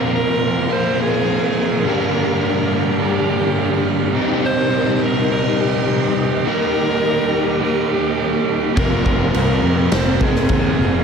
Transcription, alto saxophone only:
0.00 0.14 A#4 medium
0.15 0.74 A#4 medium
0.72 1.03 C5 loud
1.02 1.90 G#4 medium
1.89 2.44 A#4 medium
2.45 3.05 A#4 medium
3.03 3.89 G4 medium
4.46 5.05 C5 loud
5.03 5.31 A#4 medium
5.32 5.62 A#4 medium
5.61 6.49 G4 medium
6.47 7.62 A#4 loud
7.63 7.94 A#4 medium
7.93 8.51 G4 medium
8.79 9.32 A#4 medium
9.35 9.93 A#4 medium
9.92 10.24 C5 loud
10.22 11.04 G#4 medium

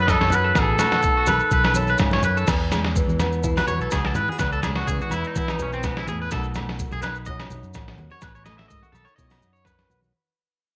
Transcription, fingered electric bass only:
0.00 0.17 F#2 medium
0.19 0.51 F#2 medium
0.55 0.77 A1 loud
1.27 1.39 B1 medium
1.51 1.94 B1 medium
2.00 2.21 G#2 medium
2.23 2.45 F#2 medium
2.48 3.01 E2 loud
3.08 3.60 E2 medium
3.67 3.78 E2 medium
3.79 3.89 B1 medium
3.92 4.13 C#2 medium
4.14 4.26 G#2 medium
4.40 4.82 C#2 medium
4.87 4.99 C#3 medium
5.11 5.22 E2 medium
5.36 5.57 E3 medium
5.59 6.01 B1 medium
6.07 6.28 E2 medium
6.32 6.85 B1 loud
6.92 7.43 B1 medium
7.50 7.62 B1 medium
7.63 7.73 F#2 medium
7.75 7.96 A1 medium
7.97 8.09 D#2 medium
8.23 8.64 A1 medium
8.70 8.81 G#2 medium
8.93 9.05 B1 medium
9.18 9.39 B2 medium
9.42 9.84 F#2 medium
9.90 10.11 B1 medium

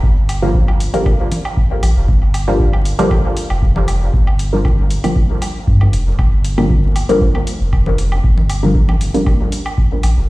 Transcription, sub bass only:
0.03 0.89 G1 loud
1.83 1.93 A1 loud
1.96 2.05 F1 medium
2.08 2.94 G1 loud
3.50 4.09 F1 medium
4.14 4.99 G1 loud
5.67 5.87 G2 medium
5.93 6.13 F1 loud
6.19 7.04 G1 loud
7.61 8.19 F1 medium
8.24 9.09 G1 loud
10.03 10.14 A1 loud
10.17 10.26 F1 medium

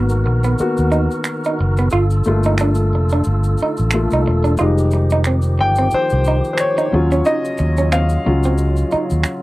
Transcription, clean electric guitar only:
0.26 muted clean electric guitar stroke soft
0.44 0.53 B3 medium
0.92 1.03 D#4 medium
1.46 1.54 D#4 medium
1.61 muted clean electric guitar stroke soft
1.79 1.87 B3 medium
1.93 2.03 F4 medium
2.28 muted clean electric guitar stroke soft
2.46 2.54 D#4 medium
2.61 2.71 D4 medium
2.95 muted clean electric guitar stroke soft
3.13 3.20 D4 medium
3.62 3.72 D#4 medium
4.13 4.21 D#4 medium
4.28 muted clean electric guitar stroke soft
4.44 4.53 D4 medium
4.59 4.70 F4 medium
4.93 muted clean electric guitar stroke soft
5.12 5.20 D#4 medium
5.27 5.37 C4 medium
5.59 muted clean electric guitar stroke soft
5.79 5.87 C4 medium
6.28 6.38 D#4 medium
6.78 6.86 D#4 medium
6.94 muted clean electric guitar stroke soft
7.12 7.20 C#4 medium
7.27 7.37 D#4 medium
7.59 muted clean electric guitar stroke soft
7.78 7.86 C#4 medium
7.93 8.03 C4 medium
8.27 muted clean electric guitar stroke soft
8.45 8.53 C4 medium
8.92 9.03 D#4 medium

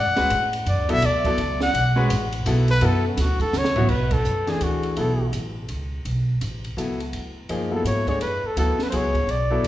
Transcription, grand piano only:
0.16 0.29 G#3 medium
0.16 0.29 C#4 medium
0.16 0.30 F#4 medium
0.16 0.30 B4 medium
0.89 1.01 F#3 medium
0.89 1.01 B3 medium
0.89 1.01 E4 medium
0.89 1.02 A4 medium
1.25 1.37 F#3 medium
1.25 1.37 B3 medium
1.25 1.38 E4 medium
1.25 1.38 A4 medium
1.96 2.08 G#3 medium
1.96 2.08 C#4 medium
1.96 2.09 F#4 medium
1.96 2.09 B4 medium
2.46 2.66 F#3 medium
2.46 2.66 B3 medium
2.46 2.67 E4 medium
2.46 2.67 A4 medium
2.81 3.02 F#3 medium
2.81 3.02 B3 medium
2.81 3.02 E4 medium
2.81 3.02 A4 medium
3.76 3.88 F#3 medium
3.76 3.88 B3 medium
3.76 3.88 E4 medium
3.76 3.89 F#4 medium
4.47 4.94 E3 medium
4.47 4.95 A3 medium
4.47 4.95 D4 medium
4.47 4.95 G#4 medium
4.97 5.17 F#3 medium
4.97 5.17 B3 medium
4.97 5.17 E4 medium
4.97 5.18 A4 medium
6.77 6.97 F#3 medium
6.77 6.97 B3 soft
6.77 6.98 E4 soft
6.77 6.98 A4 medium
7.49 7.69 F3 medium
7.49 7.70 A#3 medium
7.49 7.70 D#4 medium
7.49 7.70 G#4 medium
7.71 8.02 F#3 soft
7.71 8.03 B3 soft
7.71 8.03 E4 soft
7.71 8.03 A4 medium
8.08 8.20 A3 medium
8.08 8.20 D4 soft
8.08 8.20 G#4 medium
8.08 8.20 C#5 medium
8.57 8.77 F#3 medium
8.57 8.77 B3 medium
8.57 8.77 E4 soft
8.57 8.78 A4 medium
8.92 9.13 F#3 medium
8.92 9.13 B3 soft
8.92 9.13 E4 soft
8.92 9.13 G#4 medium
9.51 9.63 F#3 medium
9.51 9.63 B3 medium
9.51 9.63 E4 medium
9.51 9.63 A4 medium

